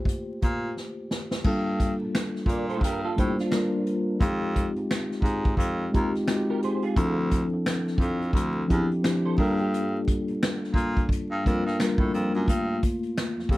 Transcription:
Already playing: tine electric piano A3 A#3 F4 G4
0.05 kick, closed hi-hat
0.42 baritone saxophone A#2, kick, closed hi-hat
0.77 snare
1.11 snare
1.31 snare
1.44 baritone saxophone G2, tine electric piano G3 A#3 D4 F4 A4, kick, crash
1.80 kick, closed hi-hat
2.00 baritone saxophone A#2
2.15 finger snap, snare, closed hi-hat
2.35 snare
2.46 baritone saxophone A#2, clean electric guitar A#4 D5, kick, closed hi-hat
2.69 clean electric guitar A4 C5, closed hi-hat
2.81 baritone saxophone G2, clean electric guitar G4 A#4, kick, closed hi-hat
3.05 clean electric guitar F4 A4
3.16 baritone saxophone A2, tine electric piano G3 A#3 D4 F4 C5, clean electric guitar G4, kick, closed hi-hat
3.39 clean electric guitar D4 F4, snare, closed hi-hat
3.51 tine electric piano G3 A#3 D4 F4 A#4, finger snap, snare, closed hi-hat
3.86 closed hi-hat
4.20 baritone saxophone F2, tine electric piano G#3 C4 D#4 G4, kick, closed hi-hat
4.56 kick, closed hi-hat
4.76 baritone saxophone G#2, closed hi-hat
4.91 finger snap, snare, closed hi-hat
5.11 snare
5.22 baritone saxophone G#2, kick, closed hi-hat
5.45 kick, closed hi-hat
5.57 baritone saxophone F2, kick, closed hi-hat
5.92 baritone saxophone D#2, tine electric piano G#3 C4 D#4 F4 G4, kick, closed hi-hat
6.15 snare, closed hi-hat
6.27 tine electric piano G#3 C4 D#4 F4 F#4, finger snap, snare, closed hi-hat
6.36 tine electric piano G4
6.50 clean electric guitar G4 A#4
6.62 clean electric guitar G#4 C5, closed hi-hat
6.82 clean electric guitar F4 G#4, closed hi-hat
6.96 baritone saxophone D2, tine electric piano F3 C4 D4 E4 A4, kick, closed hi-hat
7.31 kick, closed hi-hat
7.52 baritone saxophone F2
7.66 finger snap, snare, closed hi-hat
7.87 snare
7.98 baritone saxophone F2, kick, closed hi-hat
8.22 closed hi-hat
8.33 baritone saxophone D2, kick, closed hi-hat
8.68 baritone saxophone E2, tine electric piano F3 C4 D4 E4 G4, kick, closed hi-hat
8.91 closed hi-hat
9.03 tine electric piano F3 C4 D4 E4 G4, finger snap, snare, closed hi-hat
9.25 clean electric guitar A4 C5
9.38 baritone saxophone G2, tine electric piano G3 A#3 D4 F4 A4, clean electric guitar G4 A#4, kick, open hi-hat
9.59 clean electric guitar G4, closed hi-hat
9.74 closed hi-hat
10.08 kick, closed hi-hat
10.28 baritone saxophone A#2, closed hi-hat
10.43 finger snap, snare, closed hi-hat
10.64 snare
10.74 baritone saxophone A#2, kick, closed hi-hat
10.97 kick, closed hi-hat
11.09 kick, closed hi-hat
11.31 baritone saxophone G2
11.45 baritone saxophone F2, tine electric piano G3 A#3 D4 F4 A#4, kick, closed hi-hat
11.66 baritone saxophone G2, snare, closed hi-hat
11.79 tine electric piano G3 A#3 D4 F4 A#4, finger snap, snare, closed hi-hat
11.98 baritone saxophone A2, kick
12.14 baritone saxophone F2, closed hi-hat
12.34 baritone saxophone F#2, closed hi-hat
12.48 baritone saxophone G2, tine electric piano A3 A#3 F4, kick, closed hi-hat
12.83 kick, closed hi-hat
13.03 closed hi-hat
13.18 finger snap, snare, closed hi-hat
13.38 baritone saxophone F2, snare
13.49 baritone saxophone F2, tine electric piano G4, kick, closed hi-hat

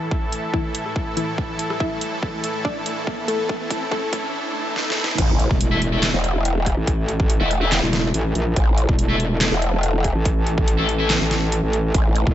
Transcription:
Already playing: supersaw synth A2 E3 E4 A4, synth pluck E3 E4, riser
0.11 kick
0.32 closed hi-hat
0.53 synth pluck E3 E4, kick
0.75 closed hi-hat
0.86 cross-stick
0.96 kick
1.17 synth pluck E3 E4, closed hi-hat
1.38 kick
1.59 closed hi-hat
1.70 cross-stick
1.80 synth pluck E4 E5, kick
2.01 closed hi-hat
2.23 kick
2.44 closed hi-hat
2.65 synth pluck D4 D5, kick
2.86 closed hi-hat
3.07 kick
3.28 synth pluck A3 A4, closed hi-hat
3.49 kick
3.70 kick, closed hi-hat
3.92 synth pluck A3 A4, kick
4.13 kick, closed hi-hat
4.34 swell
4.76 snare
4.90 snare
5.04 snare
5.18 wobble bass A1, supersaw synth E3, kick, closed hi-hat, crash, impact
5.39 closed hi-hat
5.51 wobble bass E1, kick
5.61 closed hi-hat
5.72 distorted electric guitar A3 E4 E5
5.82 closed hi-hat
5.93 distorted electric guitar A3 E4 E5
6.03 snare, clap, closed hi-hat
6.14 wobble bass E1
6.24 closed hi-hat
6.45 closed hi-hat
6.66 kick, cross-stick, closed hi-hat
6.77 wobble bass A1
6.87 kick, closed hi-hat
7.09 closed hi-hat
7.20 kick
7.30 closed hi-hat
7.40 wobble bass E1, distorted electric guitar A3 E4 E5
7.51 closed hi-hat
7.62 distorted electric guitar A3 E4 E5
7.72 snare, clap, closed hi-hat
7.83 wobble bass E1
7.93 snare, closed hi-hat
8.14 wobble bass A1, closed hi-hat
8.35 wobble bass A#1, closed hi-hat
8.56 wobble bass A1, supersaw synth A4, kick, closed hi-hat
8.78 closed hi-hat
8.89 wobble bass E1, kick
8.99 closed hi-hat
9.10 distorted electric guitar A3 E4 E5
9.20 closed hi-hat
9.41 snare, clap, closed hi-hat
9.52 wobble bass E1
9.62 closed hi-hat
9.83 closed hi-hat
10.04 kick, cross-stick, closed hi-hat
10.15 wobble bass A1
10.25 kick, closed hi-hat
10.47 closed hi-hat
10.58 kick
10.68 closed hi-hat
10.79 wobble bass A1, distorted electric guitar A3 E4 E5
10.89 closed hi-hat
11.00 distorted electric guitar A3 E4 E5
11.10 snare, clap, closed hi-hat
11.21 wobble bass A1
11.31 snare, closed hi-hat
11.52 closed hi-hat
11.63 wobble bass A1
11.73 closed hi-hat
11.94 wobble bass A1, kick, closed hi-hat
12.16 closed hi-hat
12.27 wobble bass E1, kick

